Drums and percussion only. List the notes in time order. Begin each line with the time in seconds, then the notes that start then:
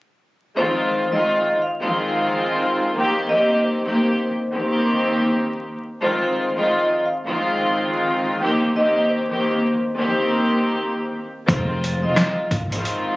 11.48 kick, closed hi-hat
11.84 closed hi-hat
12.16 cross-stick, snare, closed hi-hat
12.51 kick, closed hi-hat
12.72 closed hi-hat
12.85 closed hi-hat